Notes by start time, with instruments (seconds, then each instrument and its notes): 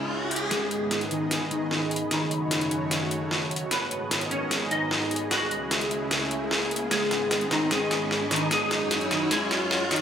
Already playing: supersaw synth C#2 C#3 G#3 E4 G#4, ambient pad C#4 G#4 E5, clean electric guitar G#4, riser
0.31 open hi-hat
0.36 closed hi-hat
0.51 supersaw synth G#2 D#3 B3 G#4 D#5, clean electric guitar G#3 G#4, snare, closed hi-hat, riser
0.71 closed hi-hat
0.75 ambient pad D#5
0.86 ambient pad G#5 B5
0.91 snare, closed hi-hat
1.01 closed hi-hat
1.11 clean electric guitar D#3 D#4, closed hi-hat
1.31 snare, closed hi-hat
1.51 clean electric guitar D#3 D#4, closed hi-hat
1.71 snare
1.91 closed hi-hat
1.96 closed hi-hat
2.11 supersaw synth F#2 C#3 A3 F#4 C#5, clean electric guitar D#3 D#4, ambient pad F#4, snare, closed hi-hat
2.31 closed hi-hat
2.51 snare, closed hi-hat
2.61 closed hi-hat
2.71 closed hi-hat
2.77 ambient pad C#5
2.83 ambient pad A5
2.91 snare, closed hi-hat
3.11 closed hi-hat
3.31 snare
3.51 closed hi-hat
3.56 closed hi-hat
3.71 supersaw synth G#2 D#3 B3 G#4 D#5, clean electric guitar B3 B4, ambient pad G#4, snare, closed hi-hat
3.85 ambient pad G#5
3.91 closed hi-hat
4.11 ambient pad D#5, snare, closed hi-hat
4.21 closed hi-hat
4.31 clean electric guitar C#4 C#5, closed hi-hat
4.43 ambient pad B5
4.51 snare, closed hi-hat
4.71 clean electric guitar D#4 D#5, closed hi-hat
4.91 snare
5.11 closed hi-hat
5.16 closed hi-hat
5.31 supersaw synth C#2 C#3 G#3 E4, ambient pad C#4, clean electric guitar F#4 F#5, snare, closed hi-hat
5.50 ambient pad E5, closed hi-hat
5.71 snare, closed hi-hat
5.81 closed hi-hat
5.91 closed hi-hat
6.11 snare, closed hi-hat
6.31 closed hi-hat
6.51 snare
6.71 closed hi-hat
6.76 closed hi-hat
6.91 supersaw synth G#2 D#3 B3 D#5, clean electric guitar G#3 G#4, snare, closed hi-hat
7.11 ambient pad D#5, snare, closed hi-hat
7.31 snare, closed hi-hat
7.41 ambient pad G#5, closed hi-hat
7.47 clean electric guitar D#3, ambient pad B5, snare, closed hi-hat
7.51 clean electric guitar D#4
7.71 clean electric guitar G#3 G#4, snare, closed hi-hat
7.91 snare, closed hi-hat
8.11 snare
8.31 clean electric guitar D#3 D#4, snare, open hi-hat
8.36 closed hi-hat
8.51 supersaw synth F#2 F#3 C#4 F#4 C#5, clean electric guitar G#3 G#4, ambient pad F#4, snare, closed hi-hat
8.71 snare, closed hi-hat
8.91 snare, closed hi-hat
9.01 closed hi-hat
9.06 ambient pad C#5 F#5
9.11 clean electric guitar D#3 D#4, snare, closed hi-hat
9.31 clean electric guitar G#3 G#4, snare, closed hi-hat
9.51 snare, closed hi-hat
9.71 snare
9.91 clean electric guitar D#3 D#4, snare, open hi-hat
9.96 closed hi-hat